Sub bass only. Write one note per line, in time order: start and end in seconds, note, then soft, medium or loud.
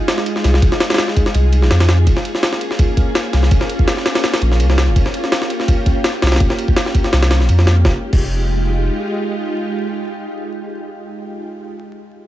0.44 0.61 C2 medium
0.62 0.71 F1 medium
1.35 1.64 C2 loud
1.62 1.70 A#1 loud
1.71 2.06 F2 medium
2.07 2.16 F1 medium
3.33 3.50 C2 medium
3.51 3.60 F1 medium
4.42 4.62 A#1 loud
4.60 4.89 C2 medium
4.88 4.95 F1 loud
4.96 5.05 F1 medium
6.23 6.39 C2 medium
6.40 6.49 F1 loud
7.13 7.42 C2 loud
7.41 7.48 A#1 medium
7.49 7.84 F2 medium
7.85 7.96 F1 medium
8.13 8.90 F1 medium